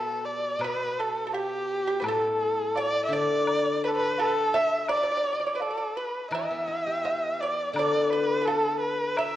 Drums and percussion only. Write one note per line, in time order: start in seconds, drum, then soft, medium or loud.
0.61 high woodblock medium
1.33 low woodblock soft
2.04 high woodblock medium
2.76 low woodblock soft
3.47 high woodblock medium
4.18 low woodblock soft
4.89 high woodblock medium
5.60 low woodblock soft
6.32 high woodblock medium
7.05 low woodblock soft
7.76 high woodblock medium
8.48 low woodblock soft
9.17 high woodblock medium